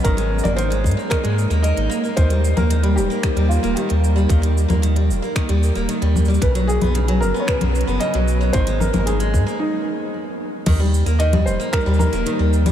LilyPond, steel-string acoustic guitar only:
\new Staff \with { instrumentName = "Steel-string acoustic guitar" } { \clef bass \time 4/4 \key ees \major \tempo 4 = 113 ees16 aes8 bes16 ees16 aes8 bes16 ees16 aes16 r16 bes16 bes'16 ees'16 bes16 bes16 | ees16 g8 bes16 ees16 g8 bes16 ees16 g8 bes16 ees16 g8 g16 | ees16 g8 bes16 ees16 g8 bes16 ees16 g8 bes16 ees16 g8 g16 | cis16 fis8 b16 cis16 fis8 b16 cis16 fis8 b16 cis16 fis8 fis16 |
ees16 aes8 bes16 ees16 aes8 bes16 r2 | ees16 g8 bes16 ees16 g8 bes16 ees16 g8 bes16 ees16 g8 g16 | }